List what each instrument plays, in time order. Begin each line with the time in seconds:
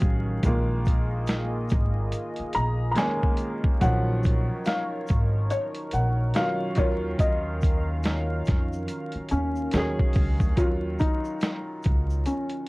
Already playing: upright piano D#3 F#3 C#4 G#4, analog synth pad D#3 F#3 C#4 F5
0.00 upright bass A1, kick, shaker
0.43 upright bass A#1, upright piano D#3 G#3 A#3, analog synth pad A#3 F4 G#4 D#5, kick, closed hi-hat, shaker
0.47 upright piano F4
0.85 kick, closed hi-hat, shaker
1.27 snare, closed hi-hat, shaker
1.70 upright bass G#1, kick, closed hi-hat, shaker
2.12 closed hi-hat, shaker
2.36 muted upright bass stroke, closed hi-hat
2.53 upright bass A#1, felt piano A#5, closed hi-hat, shaker
2.91 upright piano D#3, felt piano A#5
2.96 upright piano G#3 A#3 C#4, felt piano G#5, snare, closed hi-hat, shaker
3.23 kick
3.37 closed hi-hat, shaker
3.64 kick
3.80 upright bass A#1, upright piano D#3 F#3 C#4, analog synth pad D#4 A#4 C#5, felt piano F#5, kick, closed hi-hat, shaker
3.84 upright piano F3
4.23 kick, closed hi-hat, shaker
4.65 felt piano F5, snare, closed hi-hat, shaker
5.07 upright bass G#1, kick, closed hi-hat, shaker
5.50 felt piano C#5, closed hi-hat, shaker
5.74 closed hi-hat
5.91 upright bass A#1, felt piano F#5, closed hi-hat, shaker
6.34 upright piano D#3 F#3 C#4, felt piano F5, snare, closed hi-hat, shaker
6.39 upright piano F4
6.75 upright bass D#2, upright piano D#3 F#3 C#4, analog synth pad D#3 C#4 F5, felt piano C#5, kick, closed hi-hat, shaker
6.80 upright piano F4
7.19 upright bass D#2, felt piano D#5, kick, closed hi-hat, shaker
7.61 kick, closed hi-hat, shaker
8.03 snare, closed hi-hat, shaker
8.46 upright bass F2, kick, snare, closed hi-hat, shaker
8.73 shaker
8.88 closed hi-hat, shaker
9.12 muted upright bass stroke, closed hi-hat
9.29 upright bass D#2, felt piano C#4, closed hi-hat, shaker
9.56 shaker
9.72 upright bass D#2, upright piano D#3 F#3, snare, closed hi-hat, shaker
9.76 upright piano C#4 G#4
9.99 kick
10.13 upright bass C#2, kick, open hi-hat, shaker
10.40 upright bass D2, kick, shaker
10.56 upright bass D#2, upright piano D#3 F#3 C#4, felt piano F4, kick, closed hi-hat, shaker
10.60 upright piano F4
10.99 felt piano D#4, kick, closed hi-hat, shaker
11.25 shaker
11.41 snare, closed hi-hat, shaker
11.83 upright bass C#2, kick, closed hi-hat, shaker
12.11 shaker
12.26 felt piano C#4, closed hi-hat, shaker
12.50 closed hi-hat